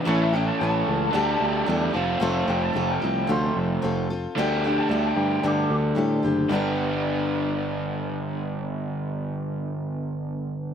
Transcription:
X:1
M:4/4
L:1/16
Q:1/4=112
K:G
V:1 name="Lead electric guitar"
A e g a a12 | z2 g a2 g3 c'2 z6 | z2 g a2 g3 d'2 z6 | z16 |
z16 |]
V:2 name="Steel-string acoustic guitar"
[A,,E,A,^CEA]2 [A,CEA]2 [A,CEA]4 [D,G,DGA]4 [G,DGA]2 [=C=FA]2 | [=F,A,C=FA]2 [CFA]2 [A,CFA]2 [CFA]2 [F,A,CFA]4 [A,CFA]2 [CFA]2 | [D,G,DGA]2 [DGA]2 [G,DGA]4 [D,G,DGA]4 [G,DGA]2 [DGA]2 | [G,,D,G,B,DB]16- |
[G,,D,G,B,DB]16 |]
V:3 name="Overdriven electric guitar"
[A,,E,A,^CA]8 [D,A,DG]6 [=F,,=C,=F,A,=C=F]2- | [=F,,C,=F,A,C=F]12- [F,,C,F,A,CF]2 z2 | [D,A,DG]16 | [G,,D,G,B,DG]16- |
[G,,D,G,B,DG]16 |]
V:4 name="Picked electric bass" clef=bass
A,,,4 A,,,2 ^C,,2 D,,2 D,,2 E,,2 =F,,,2 | =F,,,2 F,,,2 F,,,2 C,,2 D,,2 F,,,2 F,,,4 | D,,4 D,,2 G,,2 G,,2 D,,2 A,,2 F,,,2 | G,,,16- |
G,,,16 |]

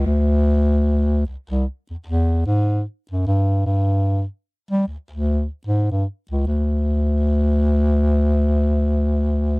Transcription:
X:1
M:4/4
L:1/16
Q:"Swing 16ths" 1/4=75
K:Gmix
V:1 name="Bass clarinet" clef=bass
D,,6 C,, C,, z E,, E,,2 ^G,,2 z ^F,, | G,,2 G,,3 z2 G, D,, D,,2 z ^G,, =G,, z ^C,, | D,,16 |]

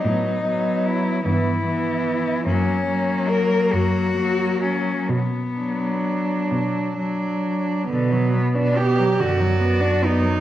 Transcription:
X:1
M:6/8
L:1/16
Q:3/8=47
K:Bm
V:1 name="Cello"
^D4 E2 E6 | C4 ^A2 F4 C2 | B,6 z6 | z6 d6 |]
V:2 name="Cello"
B,2 B,4 B,2 B,4 | ^A,2 A,6 A,4 | z2 D6 D4 | B,4 G2 F4 ^D2 |]
V:3 name="Cello" clef=bass
F,2 F,4 E,2 E,4 | F,2 F,6 F,4 | z2 F,6 F,4 | D, F, B, D B, F, D, F, B, D B, F, |]
V:4 name="Cello" clef=bass
A,,6 G,,6 | F,,6 F,,6 | B,,6 B,,6 | B,,6 F,,6 |]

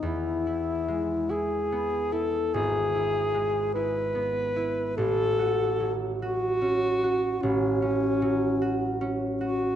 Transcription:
X:1
M:12/8
L:1/8
Q:3/8=49
K:E
V:1 name="Alto saxophone"
E3 G2 A G3 B3 | A2 z F3 C4 z F |]
V:2 name="Harp"
[E,,B,] E G, E B, E G,,, E G, E B, E | A,,, F F, F C F A,,, C F, F C F |]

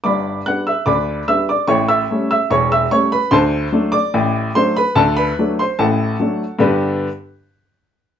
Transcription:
X:1
M:2/4
L:1/16
Q:1/4=73
K:G
V:1 name="Upright piano"
[dbd']2 [ff'] [ee'] [dbd']2 [ee'] [dd'] | [^c^c'] [ee']2 [ee'] [cc'] [ee'] [cc'] [Bb] | [cac']3 [dd']3 [cc'] [Bb] | [Aa] [Bb]2 [cc'] [Afa]4 |
[G,,D,B,DGBg]2 z6 |]
V:2 name="Upright piano" clef=bass
[G,,,G,,]2 [G,B,D]2 [D,,D,]2 [G,B,D]2 | [A,,,A,,]2 [G,A,^C]2 [E,,,E,,]2 [G,A,C]2 | [D,,D,]2 [F,A,D]2 [A,,,A,,]2 [F,A,D]2 | [D,,D,]2 [F,A,D]2 [A,,,A,,]2 [F,A,D]2 |
z8 |]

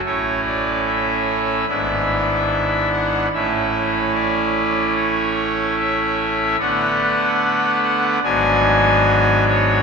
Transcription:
X:1
M:4/4
L:1/8
Q:1/4=73
K:A
V:1 name="Pipe organ"
c d e2 e3 f | e2 d2 c2 e2 | f3 f g3 c |]
V:2 name="Pipe organ"
[A,,,A,,A,CE]4 [G,,,G,,B,DE]4 | [A,,,A,,A,CE]8 | [D,A,B,D]4 [G,,,G,,F,B,D]4 |]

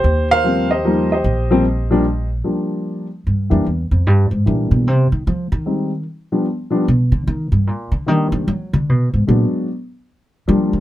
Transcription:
X:1
M:3/4
L:1/8
Q:"Swing" 1/4=150
K:Eb
V:1 name="Grand piano"
[Gc] [Bcf]2 [Gce]2 [Gce]- | [Gce]4- [Gce] z | z6 | z6 |
z6 | z6 | z6 | z6 |
z6 |]
V:2 name="Grand piano"
z2 [F,G,B,C] z [F,G,B,E] z | z [F,G,B,C] z [F,G,B,D] z2 | [F,G,B,D]3 z2 [_F,G,B,D] | z4 [=E,G,B,D]2 |
z4 [G,A,CE] z | z [F,G,=B,D] z [F,G,B,D] z2 | z4 [E,G,B,D]2 | z4 [_G,A,_CD]2 |
z4 [F,G,B,D]2 |]
V:3 name="Upright bass" clef=bass
E,,6 | B,,,6 | z4 G,, F,, | =E,, F,, G,, A,, B,, _C, |
C, E, F, E,3 | z4 =B,, D, | E, G,, B,, D, E, F, | _G, D, _C, A,, B,, z |
z4 G, F, |]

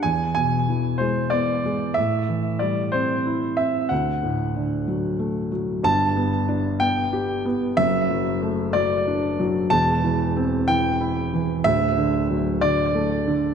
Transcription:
X:1
M:6/8
L:1/8
Q:3/8=62
K:G
V:1 name="Grand piano"
^g g2 c d2 | e2 d c2 e | f4- f z | a2 z g2 z |
e2 z d2 z | a2 z g2 z | e2 z d2 z |]
V:2 name="Felt piano" clef=bass
E,, B,, E, ^G, B, G, | A,, E, G, C E C | D,, A,, D, F, A, F, | [G,,,G,,] B, D B, G B, |
[F,,,F,,] F, A, F, D F, | [E,,,E,,] E, C E, E E, | [D,,,D,,] D, F, D, A, D, |]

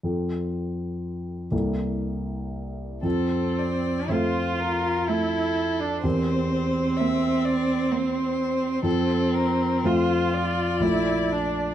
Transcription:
X:1
M:3/4
L:1/16
Q:1/4=62
K:F
V:1 name="Violin"
z12 | A2 d2 c2 B2 A4 | c4 e2 d2 c4 | A2 B2 c2 d6 |]
V:2 name="Grand piano"
[F,,CFA]6 [C,,B,EA]6 | [F,,CFA]4 [F,,CFA]8 | [E,,CGB]12 | [F,,CFA]4 [F,,CFA]4 [B,,,A,Fd]4 |]
V:3 name="Viola"
z12 | C4 F4 E3 D | C12 | C4 F4 E2 D2 |]
V:4 name="Cello"
z12 | z4 A,4 A,4 | z4 B,4 B,4 | z4 A,4 A,4 |]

